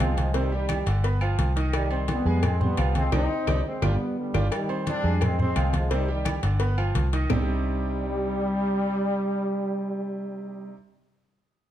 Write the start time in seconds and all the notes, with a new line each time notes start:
Already playing: G#3 C4
0.00 C2 F3 F4 F5, cowbell, high conga, claves
0.17 F3 G#3, cowbell, high conga, low agogo
0.34 C3 D#3 G3 C4 C5, cowbell, high conga
0.52 D#3 G3 G4 G5, high conga
0.69 cowbell, high conga, low agogo, claves
0.86 G1 D3 D4 D5, cowbell, high conga, low agogo
1.04 B3 B4 B5, cowbell, high conga
1.21 F3 F4 F5, high conga, low agogo, claves
1.39 C2, cowbell, high conga, low agogo
1.56 D#3 D#4 D#5, cowbell, high conga
1.73 D#3 G3, cowbell, high conga, low agogo, claves
1.91 C4 C5 C6, high conga, low agogo
2.08 G3 B3, cowbell, high conga, low agogo
2.25 F2 G#3 G#4 G#5
2.43 G#3 C4, cowbell, high conga, low conga, low agogo, claves
2.60 G3 B3 C4 C5 C6, high conga, low conga
2.77 C2 F3 F4 F5, cowbell, high conga, low agogo, claves
2.95 G#3 C4, cowbell, high conga, low agogo
3.12 C2 C4 D4 D#4 G4, cowbell, high conga, high timbale, claves
3.47 C2 D4 D#4 G4, cowbell, high conga, high timbale, claves
3.67 G#3 C4
3.82 G1 G3 B3 D4 F4 G4, cowbell, high conga, high timbale, claves
4.19 D3 G3
4.34 G1 D4 F4 G4, cowbell, high conga, high timbale, claves
4.52 D#3 G3, cowbell, high conga, low agogo, claves
4.69 C4 C5 C6, high conga, low agogo
4.87 G3 D4, cowbell, high conga, low agogo
5.04 F2 G#3 G#4 G#5
5.21 G#3 C4, cowbell, high conga, low conga, low agogo, claves
5.38 G#3 C4 C5 C6, high conga, low conga
5.55 C2 F3 F4 F5, cowbell, high conga, low agogo, claves
5.73 F3 G#3, cowbell, high conga, low agogo
5.90 C3 D#3 G3 C4 C5, cowbell, high conga
6.08 D#3 G3 G4 G5, high conga
6.25 cowbell, high conga, low agogo, claves
6.43 G1 D3 D4 D5, cowbell, high conga, low agogo
6.60 B3 B4 B5, cowbell, high conga
6.77 F3 F4 F5, high conga, low agogo, claves
6.95 C2, cowbell, high conga, low agogo
7.13 D#3 D#4 D#5, cowbell, high conga
7.30 C2 C3 G3 C4 D4 D#4 G4, low bongo, low conga, low timbale, claves